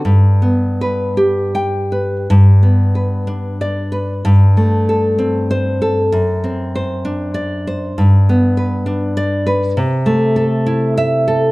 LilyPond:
\new Staff \with { instrumentName = "Nylon-string guitar" } { \time 6/8 \key g \major \tempo 4. = 65 << { r2 g''4 | r2 d''4 | r2 c''4 | r2 d''4 |
r2 d''4 | r2 e''4 | } \\ { g,8 b8 b'8 g'4 b'8 | g,8 b8 b'8 d'4 b'8 | g,8 a8 a'8 c'4 a'8 | fis,8 c'8 c''8 d'4 c''8 |
g,8 b8 b'8 d'4 b'8 | c8 a8 a'8 e'4 a'8 | } >> }